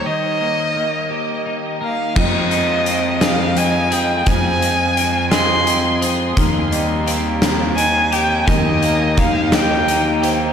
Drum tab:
CC |------|x-----|------|------|
HH |------|-xxxxx|xxxxxx|xxxxxx|
SD |------|---o--|---o--|---o--|
BD |------|o-----|o-----|o-----|

CC |------|
HH |xxxxxx|
SD |---o--|
BD |o-o---|